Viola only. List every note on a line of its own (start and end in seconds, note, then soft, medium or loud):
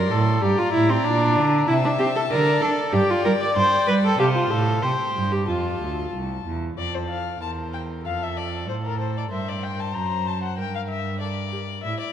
0.00 0.12 A#4 loud
0.10 0.43 A4 loud
0.42 0.60 G4 loud
0.58 0.72 F4 loud
0.73 0.91 E4 loud
0.90 1.06 C4 loud
1.04 1.67 D4 loud
1.67 1.74 E4 loud
1.85 1.91 D4 loud
1.99 2.05 G4 loud
2.16 2.22 A4 loud
2.30 2.63 A#4 loud
2.61 2.94 A4 loud
2.93 3.12 G4 loud
3.10 3.24 F4 loud
3.25 3.31 A#4 loud
3.42 3.56 D5 loud
3.57 3.87 C5 loud
3.88 3.94 B4 loud
4.05 4.19 A4 loud
4.20 4.26 G4 loud
4.36 4.52 F4 loud
4.51 4.84 A4 loud
4.83 5.33 C5 loud
5.32 5.47 G4 loud
5.48 6.12 F4 medium
7.42 8.01 C5 medium
8.05 9.28 A4 medium
9.31 10.59 C5 medium
10.57 11.20 A#4 medium
11.20 11.28 A4 medium
11.52 11.60 G4 medium
11.84 12.13 E4 medium